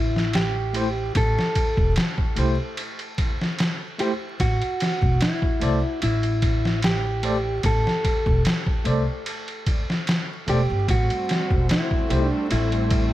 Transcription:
Already playing: A1 E4
0.16 snare
0.33 G4, snare, ride
0.73 A3 E4 G4 C5, ride
1.15 A1 A4, kick, ride
1.39 snare
1.55 kick, ride
1.77 E1, kick
1.96 snare, ride
2.18 kick
2.36 C2 A3 E4 G4 C5, ride
2.77 ride
2.99 ride
3.18 kick, ride
3.41 snare
3.59 snare, ride
3.98 A3 E4 G4 C5, ride
4.40 A1 F#4, kick, ride
4.62 ride
4.80 snare, ride
5.02 E1, kick
5.21 E4, snare, ride
5.42 kick
5.60 C2 A3 A4 C5 D5, ride
6.02 A1 E4, ride
6.23 ride
6.42 kick, ride
6.65 snare
6.82 G4, snare, ride
7.23 A3 A4 C5 D5, ride
7.63 A1 A4, kick, ride
7.87 snare
8.04 kick, ride
8.26 E1, kick
8.45 snare, ride
8.67 kick
8.84 C2 A3 A4 C5 D5, ride
9.26 ride
9.48 ride
9.66 kick, ride
9.90 snare
10.07 snare, ride
10.47 E1 A3 G4 A4 C5 D5, ride
10.70 G1
10.87 A1 G3 A3 C4 F#4, kick, ride
11.10 ride
11.29 snare, ride
11.50 E1, kick
11.69 E4, snare, ride
11.91 kick
12.09 C2 A3 E4 G4 C5, ride
12.27 D4
12.51 A1 E4, ride
12.72 ride
12.90 kick, ride

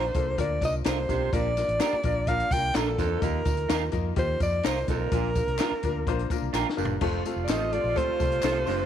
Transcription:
Already playing: A#1 C5
0.14 C2 A#3 D4 F4 A4, kick, closed hi-hat, tambourine
0.38 D2 A#3 D4 F4 A#4 D5, kick, closed hi-hat, tambourine
0.61 C2 A#3 D4 F4 A#4 D#5, kick, closed hi-hat, tambourine
0.84 C2 A#3 D4 F4 A4 A#4 C5, snare, clap, closed hi-hat, tambourine
1.09 B1 C3 A#3 D4 F4 G4, kick, snare, closed hi-hat, tambourine
1.33 A#1 A#2 A#3 D4 F4 A#4 D5, kick, closed hi-hat, tambourine
1.57 A#3 D4 F4 A#4, snare, closed hi-hat, tambourine
1.68 A1, closed hi-hat
1.79 A#3 D4 F4 G4 A#4, snare, clap, closed hi-hat, tambourine
1.93 muted fingered electric bass stroke
2.03 A#1 A#3 D4 F4 A#4, kick, closed hi-hat, tambourine
2.27 A#3 D4 F4 A#4 F5, kick, closed hi-hat, tambourine
2.40 closed hi-hat
2.51 C2 A#3 D4 F4 A#4 G5, kick, closed hi-hat, tambourine
2.74 A#1 A#3 D4 F4 A4 A#4, snare, clap, closed hi-hat, tambourine
2.98 E2 F2 A#3 D4 F4 A#4, kick, snare, closed hi-hat, tambourine
3.22 D#2 A#3 D#4 F4 A#4, kick, closed hi-hat, tambourine
3.45 D2 A#3 D#4 F4 A#4, kick, snare, closed hi-hat, tambourine
3.57 closed hi-hat
3.69 D#2 A#3 D#4 F4 A#4, snare, clap, closed hi-hat, tambourine
3.92 F2 A#3 D#4 F4 A#4, kick, closed hi-hat, tambourine
4.16 D#2 A#3 D#4 F4 G4 C5, kick, closed hi-hat, tambourine
4.40 F2 A#3 D#4 F4 A#4 D5, kick, closed hi-hat, tambourine
4.63 C2 A#3 D#4 F4 A#4 C5, snare, clap, closed hi-hat, tambourine
4.88 B1 F2 A#3 D#4 F4 A#4, kick, snare, closed hi-hat, tambourine
5.12 A#1 A#2 A#3 D4 F4 A#4, kick, closed hi-hat, tambourine
5.35 A#3 D4 F4 A#4, kick, closed hi-hat, tambourine
5.47 C2, closed hi-hat
5.58 A#3 D4 F4 A#4, snare, clap, closed hi-hat, tambourine
5.71 muted fingered electric bass stroke
5.83 D2 A#3 D4 F4 A#4, kick, closed hi-hat, tambourine
6.07 A#1 A#3 D4 F4 C5, kick, closed hi-hat, tambourine
6.19 closed hi-hat
6.30 A#3 D4 F4 A#4 A#5, muted fingered electric bass stroke, kick, closed hi-hat, tambourine
6.42 C2
6.53 A#1 A#3 D4 F4 A#4 G5, snare, clap, tambourine
6.69 snare
6.77 F#1 G2 A#3 D4 F4 A#4 F5, tambourine
6.85 floor tom
7.01 F1 F2 C3 A3 C4 F4 A4, kick, crash, tambourine
7.25 A3 C4 F4 A4, closed hi-hat, tambourine
7.36 F1
7.44 D5
7.48 A1 A3 C4 F4 A4 D#5, snare, clap, closed hi-hat, tambourine
7.72 A3 C4 F4 A4 D5, closed hi-hat
7.84 A#1
7.95 A3 C4 F4 A4 C5, kick, closed hi-hat, tambourine
8.08 muted fingered electric bass stroke
8.20 C2 A3 C4 F4 A4, kick, closed hi-hat, tambourine
8.32 closed hi-hat
8.42 C2 A3 C4 F4 A4, snare, clap, closed hi-hat, tambourine
8.66 F#1 G2 A3 C4 F4 C5, snare, open hi-hat, tambourine

